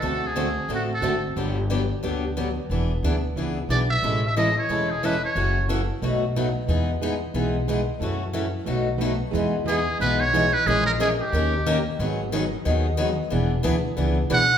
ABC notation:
X:1
M:4/4
L:1/16
Q:"Swing" 1/4=181
K:E
V:1 name="Muted trumpet"
A2 G6 F2 A4 z2 | z16 | z12 =d2 e2- | e2 e2 d2 c4 G2 B2 c2- |
c4 z12 | z16 | z16 | z4 G4 B2 c4 B2 |
G2 ^A2 G2 =G8 z2 | z16 | z12 f4 |]
V:2 name="Steel-string acoustic guitar"
[=D,A,=CFA]2 z2 [D,A,CFA] z3 [D,A,CFA]2 z2 [D,A,CFA] z3 | [=D,F,B,=D=G]2 z2 [D,F,B,DG] z3 [D,F,B,DG]2 z2 [D,F,B,DG] z3 | [E,B,=DGB]2 z2 [E,B,DGB] z3 [E,B,DGB]2 z2 [E,B,DGB] z3 | [E,G,CEA]2 z2 [E,G,CEA]2 z2 [E,G,CEA]2 z2 [E,G,CEA]2 z2 |
[F,CEA]2 z2 [F,CEA]2 z2 [B,,F,A,DFB]2 z2 [B,,F,A,DFB]2 z2 | [E,G,B,DG]2 z2 [E,G,B,DG]2 z2 [E,G,B,DG]2 z2 [E,G,B,DG]2 z2 | [F,CEA]2 z2 [F,CEA]2 z2 [B,,F,A,DFB]2 z2 [B,,F,A,DFB]2 z2 | [E,G,B,DG]2 z2 [E,G,B,DG]2 z2 [E,G,B,DG]2 z2 [E,G,B,DG]2 z2 |
[E,G,CG^A]2 z2 [E,G,CGA]2 z2 [D,^A,C=GA]2 z2 [D,A,CGA]2 z2 | [D,F,B,DG]2 z2 [D,F,B,DG]2 z2 [D,F,B,DG]2 z2 [D,F,B,DG]2 z2 | [E,B,=DGB]2 z2 [E,B,DGB]2 z2 [E,B,DGB]2 z2 [E,B,DGB]2 z2 |]
V:3 name="Steel-string acoustic guitar"
[=D,A,=CFA]2 z2 [D,A,CFA] z3 [D,A,CFA]2 z2 [D,A,CFA] z3 | [=D,F,B,=D=G]2 z2 [D,F,B,DG] z3 [D,F,B,DG]2 z2 [D,F,B,DG] z3 | [E,B,=DG]2 z2 [E,B,DG] z3 [E,B,DG]2 z2 [E,B,DG] z3 | [E,G,CEA]2 z2 [E,G,CEA]2 z2 [E,G,CEA]2 z2 [E,G,CEA]2 z2 |
[C,E,A,CF]2 z2 [C,E,A,CF]2 z2 [B,,F,A,DF]2 z2 [B,,F,A,DF]2 z2 | [E,B,DG]2 z2 [E,B,DG]2 z2 [E,B,DG]2 z2 [E,B,DG]2 z2 | [C,E,A,CF]2 z2 [C,E,A,CF]2 z2 [B,,F,A,DF]2 z2 [B,,F,A,DF]2 z2 | [E,B,DG]2 z2 [E,B,DG]2 z2 [E,B,DG]2 z2 [E,B,DG]2 z2 |
[E,G,CG^A]2 z2 [E,G,CGA]2 z2 [D,^A,C=GA]2 z2 [D,A,CGA]2 z2 | [D,F,B,DG]2 z2 [D,F,B,DG]2 z2 [D,F,B,DG]2 z2 [D,F,B,DG]2 z2 | [E,B,=DG]2 z2 [E,B,DG]2 z2 [E,B,DG]2 z2 [E,B,DG]2 z2 |]
V:4 name="Upright bass" clef=bass
=D,,8 A,,,4 G,,,4 | =G,,,8 =D,,8 | E,,,4 =D,,4 C,,4 B,,,4 | A,,,8 E,,,8 |
F,,,8 B,,,8 | E,,8 B,,,8 | F,,8 B,,,8 | E,,8 B,,,8 |
^A,,,8 D,,8 | G,,,8 D,,8 | E,,,4 =D,,4 C,,4 B,,,4 |]